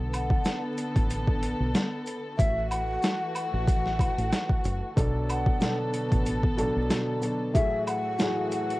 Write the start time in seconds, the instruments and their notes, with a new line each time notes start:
Already playing: fingered electric bass B1, string section D3 B3 A4
0.13 flute F#5, closed hi-hat, high woodblock, maracas
0.30 kick
0.45 snare, closed hi-hat, maracas
0.78 closed hi-hat, maracas
0.96 fingered electric bass A1, kick, closed hi-hat
1.10 closed hi-hat, maracas
1.27 kick
1.42 closed hi-hat, maracas
1.60 fingered electric bass B1
1.74 snare, closed hi-hat, maracas
2.06 closed hi-hat, maracas
2.38 fingered electric bass A1, string section E3 A3 F#4, flute E5, kick, closed hi-hat, maracas
2.70 flute F#5, closed hi-hat, high woodblock, maracas
3.02 snare, closed hi-hat, maracas
3.35 flute F#5, closed hi-hat, high woodblock, maracas
3.54 fingered electric bass A1
3.68 kick, closed hi-hat, maracas
3.86 snare
3.99 kick, closed hi-hat, high woodblock, maracas
4.18 fingered electric bass A1, closed hi-hat
4.32 snare, closed hi-hat, maracas
4.49 kick
4.64 fingered electric bass F#1, closed hi-hat, maracas
4.96 fingered electric bass B1, upright piano B2 F#3 D4 A4, string section D3 B3 A4, kick, closed hi-hat, maracas
5.29 flute F#5, closed hi-hat, high woodblock, maracas
5.46 kick
5.60 upright piano B2 F#3 D4 A4, snare, closed hi-hat, maracas
5.93 closed hi-hat, maracas
6.12 fingered electric bass A1, kick, closed hi-hat
6.26 closed hi-hat, maracas
6.43 kick
6.57 upright piano B2 F#3 D4 A4, closed hi-hat, maracas
6.76 fingered electric bass B1
6.89 upright piano B2 F#3 D4 A4, snare, closed hi-hat, maracas
7.21 upright piano B2 F#3 D4 A4, closed hi-hat, maracas
7.54 upright piano A2 F#3 E4 G#4, string section E3 A3 F#4, flute E5, kick, closed hi-hat, maracas
7.87 flute F#5, closed hi-hat, high woodblock, maracas
8.19 upright piano A2 F#3 E4 G#4, snare, closed hi-hat, maracas
8.51 flute F#5, closed hi-hat, maracas
8.70 closed hi-hat